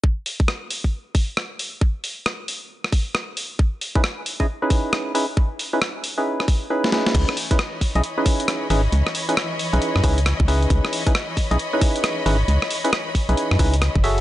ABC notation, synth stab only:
X:1
M:4/4
L:1/16
Q:"Swing 16ths" 1/4=135
K:C#m
V:1 name="Synth stab"
z16 | z16 | z3 [CDEGB] z3 [CDEGd] z [CDEGB]4- [CDEGB] [CDEGB] z | z3 [CDEGB] z3 [CDEGB]3 z2 [CDEGB]2 [CDEGB]2- |
[CDEGB]2 z [CDEGB] z3 [CDEGd] z [CDEGB]4- [CDEGB] [CDEGB] z | z3 [CDEGB] z3 [CDEGB]3 [CDEGB] z3 [CDEGB]2- | [CDEGB]3 [CDEGB] z3 [CDEGd] z [CDEGB]4- [CDEGB] [CDEGB] z | z3 [CDEGB] z3 [CDEGB]3 [CDEGB] z3 [FGAce]2 |]